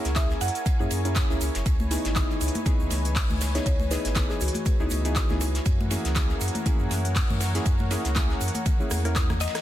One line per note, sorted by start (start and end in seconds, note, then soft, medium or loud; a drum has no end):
0.00 1.62 E4 medium
0.00 1.62 A#4 medium
0.00 5.62 C#5 medium
0.00 0.12 F#5 loud
0.00 1.64 G#5 medium
0.04 0.35 C#2 medium
0.04 snare soft
0.04 closed hi-hat medium
0.04 shaker soft
0.16 0.41 A#3 loud
0.16 0.41 C#4 medium
0.16 0.41 E4 medium
0.16 0.41 G#4 loud
0.16 0.42 E5 loud
0.16 kick loud
0.16 snare loud
0.16 clap loud
0.16 closed hi-hat medium
0.16 ride medium
0.16 shaker medium
0.30 snare medium
0.30 shaker soft
0.41 0.50 F#2 loud
0.41 1.37 F#5 medium
0.41 open hi-hat loud
0.41 ride medium
0.41 shaker medium
0.48 closed hi-hat medium
0.55 closed hi-hat soft
0.55 shaker soft
0.66 kick loud
0.66 closed hi-hat medium
0.66 ride medium
0.66 shaker medium
0.80 0.87 F#2 loud
0.80 1.02 A#3 medium
0.80 1.02 C#4 medium
0.80 1.02 E4 medium
0.80 1.02 G#4 loud
0.80 shaker soft
0.91 1.22 F#2 medium
0.91 open hi-hat loud
0.91 ride medium
0.91 shaker medium
1.05 1.27 A#3 loud
1.05 1.27 C#4 medium
1.05 1.27 E4 medium
1.05 1.27 G#4 loud
1.05 closed hi-hat soft
1.05 shaker soft
1.16 kick loud
1.16 snare loud
1.16 clap loud
1.16 closed hi-hat medium
1.16 ride medium
1.16 shaker medium
1.30 1.37 C#2 medium
1.30 1.44 A#3 loud
1.30 1.44 C#4 medium
1.30 1.44 E4 medium
1.30 1.44 G#4 loud
1.30 snare soft
1.30 shaker soft
1.41 1.50 C#2 loud
1.41 open hi-hat loud
1.41 ride medium
1.41 shaker medium
1.54 1.62 F#1 loud
1.54 snare medium
1.54 closed hi-hat soft
1.54 shaker soft
1.66 1.97 C#2 loud
1.66 9.61 E3 medium
1.66 5.62 B4 medium
1.66 5.62 G#5 medium
1.66 kick loud
1.66 closed hi-hat medium
1.66 ride medium
1.66 shaker medium
1.80 high conga medium
1.80 shaker soft
1.91 2.13 B3 medium
1.91 2.13 D#4 medium
1.91 2.13 E4 medium
1.91 2.13 G#4 medium
1.91 snare soft
1.91 open hi-hat loud
1.91 ride medium
1.91 shaker medium
2.05 2.35 G#1 medium
2.05 snare medium
2.05 closed hi-hat medium
2.05 shaker soft
2.16 2.63 B3 medium
2.16 2.63 D#4 medium
2.16 2.63 E4 medium
2.16 2.63 G#4 loud
2.16 kick loud
2.16 snare loud
2.16 clap loud
2.16 closed hi-hat medium
2.16 ride medium
2.16 high conga medium
2.16 low conga medium
2.16 shaker medium
2.30 snare soft
2.30 shaker soft
2.41 2.50 C#2 loud
2.41 open hi-hat loud
2.41 ride medium
2.41 shaker medium
2.48 closed hi-hat medium
2.55 closed hi-hat soft
2.55 high conga loud
2.55 shaker soft
2.66 3.52 B3 medium
2.66 3.52 D#4 medium
2.66 3.52 E4 medium
2.66 3.52 G#4 loud
2.66 kick loud
2.66 closed hi-hat medium
2.66 ride medium
2.66 low conga medium
2.66 shaker soft
2.80 2.87 C#2 loud
2.80 shaker soft
2.90 3.22 C#2 medium
2.90 snare soft
2.90 open hi-hat loud
2.90 ride medium
2.90 high conga medium
2.90 shaker medium
3.05 closed hi-hat soft
3.05 shaker soft
3.16 kick loud
3.16 snare loud
3.16 clap loud
3.16 closed hi-hat medium
3.16 open hi-hat medium
3.16 shaker soft
3.30 3.60 C#2 medium
3.30 high conga loud
3.30 low conga medium
3.30 shaker soft
3.41 snare soft
3.41 open hi-hat loud
3.41 ride medium
3.41 high bongo medium
3.41 shaker loud
3.55 3.69 B3 loud
3.55 3.69 D#4 medium
3.55 3.69 E4 medium
3.55 3.69 G#4 loud
3.55 3.62 C#5 medium
3.55 snare soft
3.55 closed hi-hat medium
3.55 shaker soft
3.66 3.97 C#2 loud
3.66 3.75 C#5 medium
3.66 kick loud
3.66 closed hi-hat medium
3.66 ride medium
3.66 shaker medium
3.79 high conga medium
3.79 shaker soft
3.91 4.08 B3 loud
3.91 4.08 D#4 loud
3.91 4.08 E4 medium
3.91 4.08 G#4 loud
3.91 4.10 B4 medium
3.91 snare medium
3.91 open hi-hat loud
3.91 ride medium
3.91 shaker loud
4.05 4.35 G#1 medium
4.05 snare soft
4.05 closed hi-hat medium
4.05 shaker soft
4.15 4.41 B3 loud
4.15 4.41 D#4 medium
4.15 4.41 E4 medium
4.15 4.41 G#4 loud
4.15 kick loud
4.15 snare loud
4.15 clap loud
4.15 closed hi-hat medium
4.15 ride medium
4.15 high conga medium
4.15 low conga medium
4.15 shaker soft
4.30 4.39 G#4 loud
4.30 snare medium
4.30 shaker soft
4.41 4.50 C#2 loud
4.41 4.91 F#4 medium
4.41 open hi-hat loud
4.41 ride medium
4.41 high bongo soft
4.41 shaker medium
4.48 closed hi-hat medium
4.54 closed hi-hat medium
4.54 high conga medium
4.54 shaker soft
4.65 kick loud
4.65 closed hi-hat medium
4.65 ride medium
4.65 low conga medium
4.65 shaker medium
4.80 4.87 C#2 loud
4.80 5.02 B3 medium
4.80 5.02 D#4 medium
4.80 5.02 E4 medium
4.80 5.02 G#4 loud
4.80 shaker soft
4.90 5.22 C#2 medium
4.90 open hi-hat loud
4.90 ride medium
4.90 high conga medium
4.90 shaker medium
5.05 5.27 B3 loud
5.05 5.27 D#4 medium
5.05 5.27 E4 medium
5.05 5.27 G#4 loud
5.05 closed hi-hat medium
5.05 shaker soft
5.16 kick loud
5.16 snare loud
5.16 clap loud
5.16 closed hi-hat medium
5.16 ride loud
5.16 shaker medium
5.29 5.60 C#2 medium
5.29 5.44 B3 loud
5.29 5.44 D#4 medium
5.29 5.44 E4 medium
5.29 5.44 G#4 loud
5.29 snare soft
5.29 high conga medium
5.29 low conga medium
5.29 shaker soft
5.41 open hi-hat loud
5.41 ride medium
5.41 high bongo medium
5.41 shaker medium
5.55 snare medium
5.55 closed hi-hat medium
5.55 shaker soft
5.65 5.97 F#2 loud
5.65 9.61 A#4 medium
5.65 9.61 C#5 medium
5.65 9.61 F#5 medium
5.65 kick loud
5.65 closed hi-hat medium
5.65 ride loud
5.65 shaker medium
5.80 high conga medium
5.80 shaker soft
5.91 6.12 A#3 medium
5.91 6.13 C#4 medium
5.91 6.13 E4 medium
5.91 6.13 G#4 medium
5.91 snare soft
5.91 open hi-hat loud
5.91 ride medium
5.91 shaker medium
6.05 6.35 C#2 medium
6.05 snare medium
6.05 closed hi-hat medium
6.05 shaker soft
6.15 6.63 A#3 medium
6.15 6.63 C#4 medium
6.15 6.63 E4 medium
6.15 6.63 G#4 loud
6.15 kick loud
6.15 snare loud
6.15 clap loud
6.15 closed hi-hat medium
6.15 ride loud
6.15 high conga medium
6.15 low conga medium
6.15 shaker medium
6.29 snare soft
6.29 shaker soft
6.41 6.50 F#2 medium
6.41 open hi-hat loud
6.41 ride medium
6.41 shaker medium
6.48 closed hi-hat medium
6.55 closed hi-hat medium
6.55 high conga medium
6.55 shaker soft
6.66 7.51 A#3 medium
6.66 7.52 C#4 medium
6.66 7.52 E4 medium
6.66 7.52 G#4 loud
6.66 kick loud
6.66 closed hi-hat medium
6.66 ride medium
6.66 low conga medium
6.66 shaker medium
6.79 6.87 F#2 medium
6.79 shaker soft
6.90 7.22 F#2 medium
6.90 snare soft
6.90 open hi-hat loud
6.90 ride medium
6.90 high conga medium
6.90 shaker medium
7.05 closed hi-hat medium
7.05 shaker soft
7.16 kick loud
7.16 snare loud
7.16 clap loud
7.16 closed hi-hat medium
7.16 open hi-hat medium
7.16 shaker soft
7.30 7.60 F#2 medium
7.30 high conga medium
7.30 low conga medium
7.30 shaker soft
7.40 snare medium
7.40 open hi-hat loud
7.40 ride medium
7.40 high bongo medium
7.40 shaker medium
7.55 7.69 A#3 medium
7.55 7.69 C#4 medium
7.55 7.69 E4 medium
7.55 7.69 G#4 loud
7.55 snare soft
7.55 closed hi-hat medium
7.55 shaker soft
7.65 7.97 F#2 loud
7.65 kick loud
7.65 closed hi-hat medium
7.65 ride loud
7.65 shaker medium
7.78 high conga medium
7.78 shaker soft
7.90 8.08 A#3 loud
7.90 8.08 C#4 medium
7.90 8.08 E4 loud
7.90 8.08 G#4 loud
7.90 snare medium
7.90 open hi-hat loud
7.90 ride medium
7.90 shaker medium
8.04 8.35 C#2 medium
8.04 snare soft
8.04 closed hi-hat medium
8.04 shaker soft
8.15 8.41 A#3 loud
8.15 8.41 C#4 medium
8.15 8.41 E4 medium
8.15 8.41 G#4 loud
8.15 kick loud
8.15 snare loud
8.15 clap loud
8.15 closed hi-hat medium
8.15 ride medium
8.15 high conga medium
8.15 low conga medium
8.15 shaker soft
8.30 snare medium
8.30 shaker soft
8.41 8.50 F#2 loud
8.41 open hi-hat loud
8.41 ride medium
8.41 high bongo soft
8.41 shaker medium
8.48 closed hi-hat medium
8.55 closed hi-hat medium
8.55 high conga medium
8.55 shaker soft
8.66 kick loud
8.66 closed hi-hat medium
8.66 ride medium
8.66 low conga medium
8.66 shaker medium
8.80 9.02 A#3 medium
8.80 9.02 C#4 medium
8.80 9.02 E4 medium
8.80 9.02 G#4 loud
8.80 shaker soft
8.91 9.47 E2 loud
8.91 cross-stick medium
8.91 open hi-hat loud
8.91 ride medium
8.91 high conga medium
8.91 shaker medium
9.05 9.30 A#3 loud
9.05 9.30 C#4 medium
9.05 9.30 E4 medium
9.05 9.30 A#4 loud
9.05 cross-stick medium
9.05 closed hi-hat medium
9.05 shaker soft
9.15 kick loud
9.15 cross-stick medium
9.15 snare loud
9.15 clap loud
9.15 closed hi-hat medium
9.15 ride medium
9.15 shaker soft
9.30 cross-stick medium
9.30 snare soft
9.30 high conga loud
9.30 low conga loud
9.30 shaker soft
9.40 9.61 D#5 loud
9.40 snare medium
9.40 open hi-hat loud
9.40 ride medium
9.40 high bongo medium
9.40 shaker loud
9.47 snare medium
9.47 ride medium
9.55 cross-stick medium
9.55 snare medium
9.55 closed hi-hat medium
9.55 ride medium
9.55 shaker soft